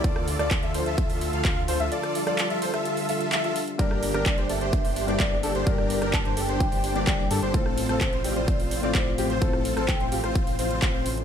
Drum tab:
HH |x-oxxxoxxooxx-ox|xxoxxxoxxooxxxox|x-oxxxoxxooxx-ox|x-oxxxoxxooxx-ox|
CP |----x-------x---|----x-------x---|----x-------x---|----x-------x---|
SD |-r-r------------|-r-r---r--------|-r-r------------|-r-r------------|
BD |o---o---o---o---|----------------|o---o---o---o---|o---o---o---o---|

HH |x-oxxxoxxooxx-ox|x-oxxxoxxooxx-ox|
CP |----x-------x---|----x-------x---|
SD |-r-r------------|-r-r---r--------|
BD |o---o---o---o---|o---o---o---o---|